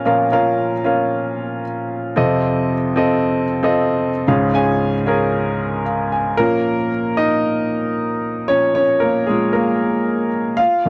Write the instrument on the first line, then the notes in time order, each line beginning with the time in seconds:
upright piano
Already playing: C#4 F4 A#4 F5 G#5
0.05 A#2 F3 C#4 F4 A#4 F5
0.32 C#4 F4 A#4 F5
0.84 C#4 F4 A#4 F5
2.16 F2 C3 C4 F4 A4 D#5
2.96 C4 F4 A4 D#5
3.63 C4 F4 A4 D#5
4.28 C#2 G#2 C#4 F4 G#4 F5
4.54 C#4 F4 G#4 G#5
5.06 C#4 F4 G#4 A#4
5.85 F5
6.12 G#5
6.37 A#2 F3 A#3 C#4 A#4
7.17 D#4 D#5
8.48 A#2 F3 C#4 C#5
8.75 C#4 C#5
9.00 A#3 A#4
9.27 A#2 F3 G#3 C#4 G#4
9.53 A#3 A#4
10.57 F4 F5
10.85 F2 D#3